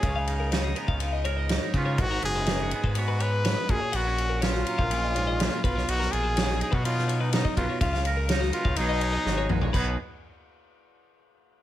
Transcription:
<<
  \new Staff \with { instrumentName = "Clean electric guitar" } { \time 4/4 \key b \lydian \tempo 4 = 124 eis''16 eis''8 ais'16 cis''16 gis'16 ais'16 eis''8 dis''16 cis''16 dis''8 cis''16 b'16 cis''16 | b'16 ais'16 gis'16 b'8 gis'8 b'16 cis''16 b'16 cis''16 b'16 cis''16 dis''16 fis'16 cis''16 | fis''16 fis''8 ais'16 cis''16 fis'16 ais'16 eis''8 dis''16 cis''16 dis''8 cis''16 b'16 cis''16 | b'16 ais'16 gis'16 b'8 gis'8 b'16 cis''16 b'16 cis''16 b'16 cis''16 dis''16 fis'16 cis''16 |
eis''16 eis''8 ais'16 cis''16 fis'16 ais'16 eis''8 dis''16 cis''16 dis''8 cis''16 b'16 cis''16 | b'8 r2. r8 | }
  \new Staff \with { instrumentName = "Trumpet" } { \time 4/4 \key b \lydian gis'4 r2 r8 eis'8 | fis'8 gis'4 gis'8 fis'8 b'4 gis'8 | fis'4 eis'2~ eis'8 eis'8 | fis'8 gis'4 gis'16 fis'16 eis'8. dis'16 dis'8 eis'8 |
eis'8 r4 eis'8 dis'4. r8 | b8 r2. r8 | }
  \new Staff \with { instrumentName = "Clean electric guitar" } { \time 4/4 \key b \lydian << { r8 dis'8 dis'8 b8 dis'8 ais'8 dis'8 b8~ | b8 fis'8 dis'16 fis'16 b8 b4. r8 | b16 cis'16 cis'8 cis'8 cis'8 cis'4. r8 | dis'16 eis'16 eis'8 dis'8 dis'16 eis'16 dis'8 dis'8 dis'8 r8 |
r8 ais'8 dis'8 b8 <fis dis' fis' gis'>8 gis'8 fis'8 dis'8 | <fis dis' fis' gis'>8 r2. r8 | } \\ { <cis fis>4. gis4 gis,4. | gis,4. gis4. gis,8 ais,8~ | ais,4 fis4 ais,8 gis,8 ais,8 b,8~ | b,4 fis4 b,4. b,8 |
cis4. gis8 b,4. fis8 | b,8 r2. r8 | } >> }
  \new Staff \with { instrumentName = "Analog synth bass" } { \clef bass \time 4/4 \key b \lydian cis,4.~ cis,16 cis,4.~ cis,16 cis8 | gis,,8 fis,,4~ fis,,16 gis,4.~ gis,16 ais,,16 r16 | ais,,4.~ ais,,16 ais,,4.~ ais,,16 b,,8 | b,,8 ais,,4~ ais,,16 b,4.~ b,16 b,,16 r16 |
cis,4.~ cis,16 cis,16 b,,4 gis,,8 ais,,8 | b,,8 r2. r8 | }
  \new DrumStaff \with { instrumentName = "Drums" } \drummode { \time 4/4 <bd cymr>8 cymr8 <cymr sn>8 cymr16 bd16 cymr8 cymr8 <cymr sn>8 <bd cymr>8 | <bd cymr>8 cymr8 <cymr sn>8 cymr16 bd16 cymr8 cymr8 <cymr sn>8 <bd cymr>8 | cymr8 cymr8 <cymr sn>16 sn16 cymr16 bd16 cymr8 cymr8 <cymr sn>8 <bd cymr>16 sn16 | cymr16 sn16 cymr8 <cymr sn>16 sn16 cymr16 bd16 cymr16 sn16 cymr8 <cymr sn>16 bd16 <bd cymr>8 |
<bd cymr>16 sn16 cymr8 <cymr sn>16 sn16 cymr16 bd16 cymr8 cymr8 sn8 toml16 tomfh16 | <cymc bd>4 r4 r4 r4 | }
>>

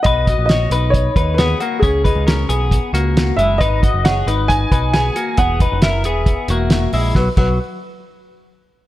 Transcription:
<<
  \new Staff \with { instrumentName = "Upright piano" } { \time 4/4 \key b \major \tempo 4 = 135 dis''4 dis''4 cis''4 b'4 | gis'4. r2 e''8 | dis''4 fis''4 gis''4 gis''4 | fis''4 e''2~ e''8 r8 |
b'8 b'8 r2. | }
  \new Staff \with { instrumentName = "Clean electric guitar" } { \time 4/4 \key b \major <dis' b'>8 <fis' dis''>8 <fis' cis''>8 <dis' b'>4 <dis' b'>8 <b gis'>8 <ais fis'>8 | <cis' gis'>8 <dis' b'>8 <cis' ais'>8 <b gis'>4 <ais fis'>4 <gis e'>8 | <dis' b'>8 <fis' dis''>8 <gis' cis''>8 <dis' b'>4 <dis' b'>8 <b gis'>8 <ais fis'>8 | <b gis'>8 <dis' b'>8 <e' ais'>8 <b gis'>4 <ais fis'>4 <gis e'>8 |
fis8 fis8 r2. | }
  \new Staff \with { instrumentName = "Picked electric bass" } { \clef bass \time 4/4 \key b \major b,,8. ais,,8. b,,4 dis,4 r8 | cis,8. cis,8. b,,8. r16 cis,4 fis,,8 | gis,,8. fis,,8. gis,,4 b,,4 r8 | e,,8. fis,,8. e,,8. r16 e,,4 ais,,8 |
b,,16 r16 b,,8 r2. | }
  \new DrumStaff \with { instrumentName = "Drums" } \drummode { \time 4/4 <hh bd>8 <hh bd>8 <hh sn>8 hh8 <hh bd>8 <hh bd>8 <hh sn>8 hh8 | <hh bd>8 <hh bd>8 <hh sn>8 hh8 <hh bd>8 hh8 <hh sn>8 hh8 | <hh bd>8 <hh bd>8 <hh sn>8 hh8 <hh bd>8 <hh bd>8 <hh sn>8 hh8 | <hh bd>8 <hh bd>8 <hh sn>8 hh8 <hh bd>8 hh8 <hh sn>8 hho8 |
<bd sn>8 <cymc bd>8 r4 r4 r4 | }
>>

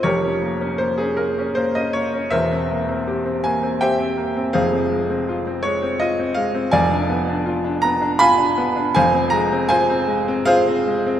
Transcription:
\new Staff \with { instrumentName = "Grand piano" } { \time 3/4 \key f \minor \tempo 4 = 80 << { <g' bes' des''>4 c''16 aes'16 bes'8 c''16 ees''16 des''8 | <bes' c'' e''>4. aes''8 <c'' e'' g''>4 | <aes' c'' f''>4. des''8 ees''8 f''8 | <d'' f'' aes''>4. bes''8 <f'' aes'' ces'''>4 |
<c'' f'' aes''>8 bes''8 <c'' f'' aes''>4 <aes' c'' f''>4 | } \\ { <f,, f,>16 des'16 bes16 des'16 bes16 des'16 bes16 des'16 bes16 des'16 bes16 des'16 | <e,, e,>16 c'16 bes16 c'16 g'16 c'16 bes16 c'16 g'16 c'16 bes16 c'16 | <f,, f,>16 c'16 aes16 c'16 f'16 c'16 aes16 c'16 f'16 c'16 aes16 c'16 | <f,, f,>16 d'16 ces'16 d'16 f'16 d'16 ces'16 d'16 f'16 d'16 ces'16 d'16 |
<f,, f,>16 c'16 aes16 c'16 f'16 c'16 aes16 c'16 f'16 c'16 aes16 c'16 | } >> }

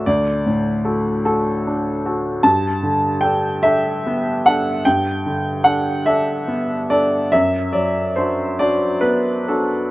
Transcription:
\new Staff \with { instrumentName = "Grand piano" } { \time 6/8 \key g \major \tempo 4. = 49 << { d''4. a'8 r4 | a''4 g''8 e''4 fis''8 | g''4 fis''8 e''4 d''8 | e''8 d''8 c''8 d''8 b'8 a'8 | } \\ { d,8 a,8 <fis' a'>8 fis'8 d'8 <fis' a'>8 | g,8 d8 <d' a'>8 <d' a'>8 b8 <d' a'>8 | g,8 d8 <d' a'>8 <d' a'>8 b8 <d' a'>8 | fis,8 fis8 <d' fis'>8 <d' fis'>8 b8 <d' fis'>8 | } >> }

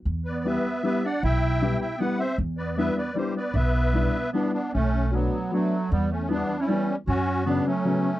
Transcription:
<<
  \new Staff \with { instrumentName = "Accordion" } { \time 3/4 \key e \minor \tempo 4 = 154 r8 <b' d''>8 <b' e''>4 <b' e''>8 <d'' fis''>8 | <e'' g''>4. <e'' g''>8 <b' fis''>8 <c'' e''>8 | r8 <b' d''>8 <b' e''>8 <b' d''>8 <g' c''>8 <b' d''>8 | <b' e''>2 <b d'>8 <b d'>8 |
\key b \minor <a cis'>4 <fis b>4 <fis a>4 | <g b>8 <a cis'>8 <b d'>8. <cis' e'>16 <g cis'>8. r16 | <cis' fis'>4 <b d'>8 <a cis'>4. | }
  \new Staff \with { instrumentName = "Clarinet" } { \time 3/4 \key e \minor r8 b8 b4 b8 d'8 | e'4. e'8 b8 c'8 | r8 b8 b8 b8 g8 b8 | b2 b8 b8 |
\key b \minor a4 fis4 fis4 | g8 a8 b8. cis'16 g8. r16 | cis'4 b8 fis4. | }
  \new Staff \with { instrumentName = "Upright piano" } { \time 3/4 \key e \minor r4 <g b e' g'>8 r8 <g b e' g'>8 r8 | r4 <g b e' g'>8 r8 <g b e' g'>8 r8 | r4 <g b d' e'>8 r8 <g b d' e'>8 r8 | r4 <g b d' e'>8 r8 <g b d' e'>8 r8 |
\key b \minor r4 <fis a b d'>8 r8 <fis a b d'>8 r8 | r4 <e g b e'>8 r8 <e g b e'>8 r8 | r4 <cis fis b cis'>8 r8 <cis fis b cis'>8 r8 | }
  \new Staff \with { instrumentName = "Upright bass" } { \clef bass \time 3/4 \key e \minor e,2 r4 | b,,2 r4 | e,2 r4 | b,,2 r4 |
\key b \minor b,,2 r4 | e,2 r4 | fis,2 r4 | }
>>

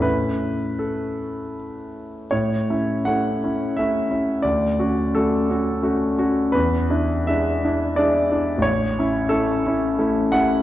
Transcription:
\new Staff \with { instrumentName = "Grand piano" } { \time 3/4 \key a \major \tempo 4 = 85 << { b'4 a'4 r4 | cis''4 fis''4 e''4 | d''4 a'4. r8 | b'4 e''4 d''4 |
cis''4 a'4. fis''8 | } \\ { <a, a cis' e'>2. | a,8 <cis' e'>8 <a cis' e'>8 <cis' e'>8 <a cis' e'>8 <cis' e'>8 | d,8 <cis' fis'>8 <a cis' fis'>8 <cis' fis'>8 <a cis' fis'>8 <cis' fis'>8 | e,8 <d' e'>8 <gis d' e'>8 <d' e'>8 <gis d' e'>8 <d' e'>8 |
a,,8 <cis' e'>8 <a cis' e'>8 <cis' e'>8 <a cis' e'>8 <cis' e'>8 | } >> }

